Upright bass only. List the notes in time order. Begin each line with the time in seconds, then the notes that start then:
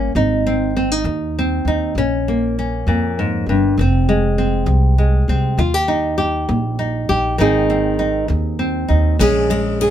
Already playing: G1
0.15 G#1
1.04 D#2
1.65 D#2
1.95 A#1
2.87 F2
3.46 G1
3.78 F1
4.66 C2
5.28 C2
5.58 D#2
6.49 A#1
7.09 A#1
7.40 G#1
8.30 D#2
8.90 D#2
9.20 A#1